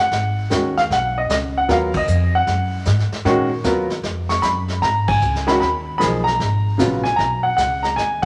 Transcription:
0.00 0.79 F#5 medium
0.11 0.49 G#1 medium
0.11 brush sweep soft
0.11 kick soft
0.11 snare soft
0.50 0.89 D#2 medium
0.50 0.73 D#3 medium
0.50 0.74 G#3 soft
0.50 0.74 C#4 soft
0.50 0.74 F#4 medium
0.50 kick soft
0.50 snare medium
0.50 hi-hat pedal soft
0.77 0.82 F5 medium
0.77 snare soft
0.90 1.28 B1 medium
0.90 1.15 F#5 medium
0.90 brush sweep soft
0.90 kick soft
0.90 snare soft
1.18 1.29 D#5 medium
1.29 1.67 C#2 medium
1.29 1.36 D#5 medium
1.29 kick soft
1.29 snare medium
1.29 hi-hat pedal soft
1.58 1.69 F#5 medium
1.68 2.06 D#2 medium
1.68 1.91 F#3 medium
1.68 1.91 B3 medium
1.68 1.92 F4 medium
1.68 1.92 A#4 medium
1.68 1.96 F5 medium
1.68 brush sweep soft
1.68 kick soft
1.68 snare soft
1.94 2.32 D#5 medium
1.94 kick medium
1.94 ride medium
2.07 2.45 F2 medium
2.07 hi-hat pedal medium
2.35 3.09 F#5 medium
2.47 2.85 F#2 medium
2.47 brush sweep medium
2.47 kick soft
2.47 snare soft
2.85 3.10 G#2 medium
2.85 kick soft
2.85 snare medium
2.85 hi-hat pedal soft
2.99 snare soft
3.12 muted upright bass stroke soft
3.12 snare soft
3.25 3.63 A#2 medium
3.25 3.48 D#3 medium
3.25 3.48 G#3 medium
3.25 3.49 C#4 medium
3.25 3.49 F#4 medium
3.25 brush sweep soft
3.25 kick soft
3.25 snare soft
3.64 4.02 D#2 medium
3.64 3.87 F#3 medium
3.64 3.88 B3 medium
3.64 3.88 F4 medium
3.64 3.88 A#4 medium
3.64 kick soft
3.64 snare medium
3.64 hi-hat pedal soft
3.90 snare soft
4.03 4.42 F2 medium
4.03 brush sweep soft
4.03 kick soft
4.03 snare soft
4.29 4.42 C#6 medium
4.29 snare medium
4.42 4.81 F#2 medium
4.42 4.83 B5 medium
4.42 kick soft
4.42 snare medium
4.42 hi-hat pedal medium
4.68 snare soft
4.82 5.21 G#2 medium
4.82 5.09 A#5 medium
4.82 brush sweep soft
4.82 kick soft
4.82 snare soft
5.08 5.49 G#5 medium
5.08 kick medium
5.08 ride medium
5.21 5.60 C#2 medium
5.21 hi-hat pedal medium
5.35 snare soft
5.47 5.59 D#3 medium
5.47 5.59 G#3 medium
5.47 5.60 C#4 medium
5.47 5.60 F#4 medium
5.47 5.53 B5 medium
5.47 snare soft
5.60 5.99 D#2 medium
5.60 5.97 B5 medium
5.60 brush sweep medium
5.60 kick soft
5.60 snare soft
5.98 6.39 B1 medium
5.98 6.23 F3 medium
5.98 6.23 A#3 medium
5.98 6.23 D#4 medium
5.98 6.23 G#4 medium
5.98 6.04 B5 medium
5.98 kick soft
5.98 snare medium
5.98 hi-hat pedal medium
6.24 7.00 A#5 medium
6.24 snare soft
6.40 6.78 G#1 medium
6.40 brush sweep soft
6.40 kick soft
6.40 snare soft
6.78 7.17 A#1 medium
6.78 7.02 C#3 medium
6.78 7.02 F#3 soft
6.78 7.02 B3 soft
6.78 7.02 F4 medium
6.78 kick soft
6.78 snare medium
6.78 hi-hat pedal medium
7.04 7.18 G#5 medium
7.04 snare soft
7.16 7.56 B1 medium
7.16 7.44 A#5 medium
7.16 brush sweep soft
7.16 kick soft
7.16 snare soft
7.43 7.55 F#5 medium
7.57 7.96 C#2 medium
7.57 7.84 F#5 medium
7.57 kick soft
7.57 snare medium
7.57 hi-hat pedal soft
7.83 7.97 A#5 medium
7.83 snare soft
7.96 8.25 D#2 medium
7.96 8.23 G#5 medium
7.96 brush sweep soft
7.96 kick soft
7.96 snare soft

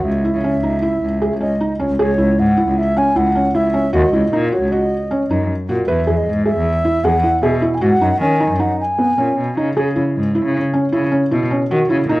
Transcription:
0.04 0.20 C#2 medium
0.04 1.41 E5 medium
0.25 0.35 E4 medium
0.34 0.42 C#3 medium
0.44 0.55 C#4 medium
0.55 0.92 C#2 medium
0.63 0.74 D#4 medium
0.82 1.04 E4 medium
1.02 1.17 C#2 medium
1.22 1.32 G#4 medium
1.31 1.47 C#2 medium
1.40 1.51 C#4 soft
1.40 1.77 D#5 medium
1.60 1.71 D#4 medium
1.79 1.88 C#2 medium
1.79 1.90 C#4 medium
1.90 1.97 C#2 medium
1.99 2.07 C#2 medium
1.99 2.10 G#4 medium
1.99 2.41 C#5 medium
2.18 2.27 C#2 medium
2.18 2.40 E4 medium
2.39 2.61 G#2 medium
2.39 2.71 F#5 medium
2.57 2.79 E4 medium
2.67 2.83 C#2 medium
2.67 2.80 F#5 medium
2.78 2.99 E5 medium
2.96 3.07 C#4 medium
2.96 3.19 G#5 medium
3.16 3.31 C#2 medium
3.16 3.27 E4 medium
3.16 3.57 F#5 medium
3.35 3.46 C#4 medium
3.55 3.70 C#2 medium
3.55 3.66 E4 medium
3.55 3.94 E5 medium
3.74 3.85 C#4 medium
3.93 4.09 D#2 medium
3.93 4.04 F#4 medium
3.93 4.49 D#5 medium
4.13 4.28 C#2 medium
4.13 4.24 E4 medium
4.33 4.56 A#2 medium
4.33 4.44 D#4 medium
4.52 4.63 F#4 medium
4.52 4.73 C#5 medium
4.61 4.77 C#2 medium
4.72 4.93 F#4 medium
4.72 5.42 D#5 medium
5.11 5.21 C#4 medium
5.30 5.45 F#2 medium
5.30 5.52 D#4 medium
5.69 5.84 A#2 medium
5.69 5.79 F#4 medium
5.88 5.96 E2 medium
5.88 5.99 B4 medium
5.88 6.19 E5 medium
6.07 6.15 E2 medium
6.07 6.29 G#4 medium
6.17 6.45 D#5 medium
6.27 6.50 G#2 medium
6.46 6.67 G#4 medium
6.46 7.06 E5 medium
6.57 6.72 E2 medium
6.85 6.96 E4 medium
7.04 7.19 E2 medium
7.04 7.15 G#4 medium
7.04 7.44 F#5 medium
7.24 7.34 E4 medium
7.42 7.58 B2 medium
7.42 7.54 G#4 medium
7.42 7.76 E5 medium
7.62 7.73 E4 medium
7.75 7.84 G#5 medium
7.81 7.97 G#2 medium
7.81 7.92 F#4 medium
7.81 8.20 F#5 medium
8.01 8.16 F#2 medium
8.01 8.12 D#4 medium
8.21 8.44 D#3 medium
8.21 8.32 C#4 medium
8.21 8.62 G#5 medium
8.40 8.51 D#4 medium
8.51 8.65 F#2 medium
8.60 8.81 D#4 medium
8.60 8.79 F#5 medium
8.81 9.53 G#5 medium
8.99 9.09 B3 medium
9.18 9.35 A#2 medium
9.18 9.40 C#4 medium
9.38 9.55 B2 medium
9.57 9.75 C#3 medium
9.57 9.68 D#4 medium
9.76 9.84 C#3 medium
9.76 9.87 G#4 medium
9.96 10.04 C#3 medium
9.96 10.17 E4 medium
10.16 10.38 G#2 medium
10.35 10.56 E4 medium
10.45 10.60 C#3 medium
10.73 10.84 C#4 medium
10.92 11.08 C#3 medium
10.92 11.03 E4 medium
11.12 11.22 C#4 medium
11.31 11.47 B2 medium
11.31 11.42 E4 medium
11.51 11.62 C#4 medium
11.71 11.86 D#3 medium
11.71 11.82 F#4 medium
11.90 12.05 C#3 medium
11.90 12.00 E4 medium
12.09 12.20 A#2 medium
12.09 12.20 D#4 medium

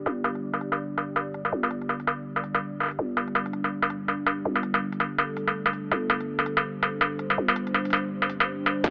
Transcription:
0.00 8.90 G3 medium
0.00 8.90 D4 medium
0.00 3.96 G4 medium
0.00 4.79 D5 medium
0.06 1.51 G1 medium
0.06 struck metal soft
0.24 closed hi-hat medium
0.24 struck metal medium
0.35 closed hi-hat soft
0.54 open hi-hat medium
0.54 struck metal soft
0.61 closed hi-hat medium
0.72 struck metal medium
0.98 closed hi-hat medium
0.98 struck metal soft
1.16 struck metal medium
1.34 closed hi-hat medium
1.45 struck metal soft
1.52 2.97 G1 medium
1.63 struck metal medium
1.71 closed hi-hat medium
1.82 closed hi-hat soft
1.89 struck metal soft
2.00 open hi-hat medium
2.07 closed hi-hat medium
2.07 struck metal medium
2.36 struck metal soft
2.44 open hi-hat medium
2.55 struck metal medium
2.80 struck metal soft
2.83 struck metal soft
2.86 struck metal soft
2.88 open hi-hat soft
2.88 struck metal soft
2.99 4.44 G1 medium
3.17 closed hi-hat medium
3.17 struck metal soft
3.28 closed hi-hat soft
3.35 struck metal medium
3.46 open hi-hat medium
3.53 closed hi-hat medium
3.64 struck metal soft
3.82 8.84 A4 medium
3.82 struck metal medium
3.90 closed hi-hat medium
4.08 struck metal soft
4.26 closed hi-hat medium
4.26 struck metal medium
4.45 5.90 G1 medium
4.56 struck metal soft
4.63 closed hi-hat medium
4.69 8.90 C5 medium
4.74 closed hi-hat soft
4.74 struck metal medium
4.92 open hi-hat medium
5.00 closed hi-hat medium
5.00 struck metal soft
5.18 struck metal medium
5.37 open hi-hat medium
5.48 struck metal soft
5.66 struck metal medium
5.73 open hi-hat soft
5.91 7.36 G1 medium
5.91 struck metal soft
6.10 closed hi-hat medium
6.10 struck metal medium
6.21 closed hi-hat soft
6.39 open hi-hat medium
6.39 struck metal soft
6.46 closed hi-hat medium
6.57 struck metal medium
6.83 closed hi-hat medium
6.83 struck metal medium
7.01 struck metal medium
7.19 closed hi-hat medium
7.30 struck metal soft
7.38 8.83 G1 medium
7.48 struck metal medium
7.56 closed hi-hat medium
7.67 closed hi-hat soft
7.74 struck metal medium
7.85 open hi-hat medium
7.90 closed hi-hat medium
7.90 open hi-hat soft
7.90 struck metal medium
8.22 struck metal medium
8.30 open hi-hat medium
8.40 struck metal medium
8.66 open hi-hat soft
8.66 struck metal medium
8.84 8.90 G1 loud
8.84 kick loud
8.84 struck metal medium

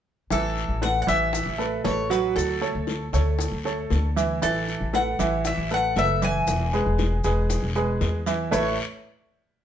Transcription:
0.30 0.67 A1 medium
0.30 0.73 E3 medium
0.30 0.73 E4 medium
0.30 0.82 A4 medium
0.30 0.73 E5 medium
0.30 high bongo medium
0.30 long guiro medium
0.30 maracas medium
0.57 high bongo soft
0.57 maracas soft
0.68 1.06 A1 medium
0.81 1.03 A3 medium
0.81 1.03 A4 medium
0.81 1.03 B4 medium
0.81 1.01 F#5 medium
0.81 high bongo medium
0.81 short guiro medium
0.81 maracas soft
1.02 1.08 F#5 medium
1.07 1.44 A1 medium
1.07 1.50 E3 medium
1.07 1.50 E4 medium
1.07 1.50 E5 medium
1.07 1.84 E5 medium
1.07 high bongo soft
1.07 short guiro medium
1.07 maracas medium
1.33 high bongo medium
1.33 long guiro medium
1.33 maracas medium
1.46 1.83 A1 medium
1.58 1.80 A3 medium
1.58 1.80 A4 medium
1.58 1.80 B4 medium
1.58 high bongo soft
1.58 maracas soft
1.84 2.34 A1 medium
1.84 2.06 A3 medium
1.84 2.06 A4 medium
1.84 2.06 B4 medium
1.84 2.09 C#5 medium
1.84 high bongo soft
1.84 low bongo medium
1.84 short guiro medium
1.84 maracas soft
2.10 2.53 F#3 medium
2.10 2.53 F#4 medium
2.10 2.36 B4 medium
2.10 2.53 F#5 medium
2.10 short guiro medium
2.10 maracas medium
2.36 2.73 D2 medium
2.36 3.10 A4 medium
2.36 high bongo medium
2.36 long guiro medium
2.36 maracas medium
2.61 3.04 A3 medium
2.61 3.04 A4 medium
2.61 3.04 C#5 medium
2.61 high bongo soft
2.61 maracas soft
2.75 3.12 D2 medium
2.87 high bongo medium
2.87 short guiro medium
2.87 maracas soft
3.13 3.50 D2 medium
3.13 3.56 A3 medium
3.13 3.56 A4 medium
3.13 3.56 C#5 medium
3.13 high bongo soft
3.13 short guiro medium
3.13 maracas medium
3.39 high bongo medium
3.39 long guiro medium
3.39 maracas medium
3.52 3.89 D2 medium
3.65 4.07 A3 medium
3.65 4.07 A4 medium
3.65 4.08 C#5 medium
3.65 high bongo soft
3.65 maracas soft
3.90 4.40 D2 medium
3.90 high bongo soft
3.90 low bongo medium
3.90 short guiro medium
3.90 maracas soft
4.16 4.38 E3 medium
4.16 4.38 E4 medium
4.16 4.38 E5 medium
4.16 short guiro medium
4.16 maracas medium
4.42 4.79 A1 medium
4.42 4.84 E3 medium
4.42 4.84 E4 medium
4.42 4.96 A4 medium
4.42 4.85 E5 medium
4.42 high bongo medium
4.42 long guiro medium
4.42 maracas medium
4.68 high bongo soft
4.68 maracas soft
4.81 5.17 A1 medium
4.93 5.14 A3 medium
4.93 5.15 A4 medium
4.93 5.15 B4 medium
4.93 5.46 F#5 medium
4.93 high bongo medium
4.93 short guiro medium
4.93 maracas soft
5.19 5.56 A1 medium
5.19 5.61 E3 medium
5.19 5.61 E4 medium
5.19 5.62 E5 medium
5.19 high bongo soft
5.19 short guiro medium
5.19 maracas medium
5.45 5.72 E5 medium
5.45 high bongo medium
5.45 long guiro medium
5.45 maracas medium
5.57 5.94 A1 medium
5.70 5.92 A3 medium
5.70 5.92 A4 medium
5.70 5.92 B4 medium
5.70 5.96 F#5 medium
5.70 high bongo soft
5.70 maracas soft
5.96 6.45 F#1 medium
5.96 6.17 A3 medium
5.96 6.18 A4 medium
5.96 6.18 B4 medium
5.96 6.24 E5 medium
5.96 high bongo soft
5.96 low bongo medium
5.96 short guiro medium
5.96 maracas soft
6.22 6.64 E3 medium
6.22 6.64 E4 medium
6.22 6.64 E5 medium
6.22 7.99 G#5 medium
6.22 short guiro medium
6.22 maracas medium
6.47 6.84 E1 medium
6.47 high bongo medium
6.47 long guiro medium
6.47 maracas medium
6.73 7.15 G#3 medium
6.73 7.15 G#4 medium
6.73 7.16 B4 medium
6.73 high bongo soft
6.73 maracas soft
6.86 7.23 E1 medium
6.98 high bongo medium
6.98 short guiro medium
6.98 maracas soft
7.24 7.61 E1 medium
7.24 7.66 G#3 medium
7.24 7.67 G#4 medium
7.24 7.66 B4 medium
7.24 high bongo soft
7.24 short guiro medium
7.24 maracas medium
7.50 high bongo medium
7.50 long guiro medium
7.50 maracas medium
7.62 7.99 E1 medium
7.75 8.18 G#3 medium
7.75 8.18 G#4 medium
7.75 8.18 B4 medium
7.75 high bongo soft
7.75 maracas soft
8.01 8.50 E2 medium
8.01 high bongo soft
8.01 low bongo medium
8.01 short guiro medium
8.01 maracas soft
8.26 8.48 E3 medium
8.26 8.48 E4 medium
8.26 8.48 E5 medium
8.26 short guiro medium
8.26 maracas medium
8.51 8.76 A1 medium
8.51 8.76 A3 medium
8.51 8.76 E4 medium
8.51 8.76 A4 medium
8.51 8.76 B4 medium
8.51 8.76 C#5 medium
8.51 8.77 C#5 medium
8.51 8.76 E5 loud
8.51 low bongo medium
8.51 long guiro medium
8.51 maracas medium

